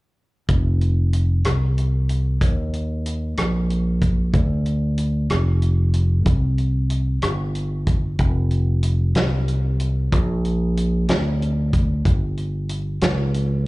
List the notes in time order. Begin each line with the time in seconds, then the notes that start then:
0.49 F1, kick, closed hi-hat
0.81 closed hi-hat
1.13 closed hi-hat
1.44 C2, cross-stick, closed hi-hat
1.78 closed hi-hat
2.09 closed hi-hat
2.41 D#2, kick, closed hi-hat
2.73 closed hi-hat
3.06 closed hi-hat
3.37 A#1, cross-stick, closed hi-hat
3.70 closed hi-hat
4.02 kick, closed hi-hat
4.33 D2, kick, closed hi-hat
4.66 closed hi-hat
4.98 closed hi-hat
5.30 F1, cross-stick, closed hi-hat
5.62 closed hi-hat
5.94 closed hi-hat
6.26 C2, kick, closed hi-hat
6.58 closed hi-hat
6.90 closed hi-hat
7.22 G1, cross-stick, closed hi-hat
7.55 closed hi-hat
7.87 kick, closed hi-hat
8.19 F1, kick, closed hi-hat
8.51 closed hi-hat
8.83 closed hi-hat
9.15 C2, snare, closed hi-hat
9.48 closed hi-hat
9.80 closed hi-hat
10.12 A#1, kick, closed hi-hat
10.45 closed hi-hat
10.77 closed hi-hat
11.08 D2, snare, closed hi-hat
11.42 closed hi-hat
11.73 kick, closed hi-hat
12.05 G1, kick, closed hi-hat
12.37 closed hi-hat
12.69 closed hi-hat
13.01 C#2, snare, closed hi-hat
13.34 closed hi-hat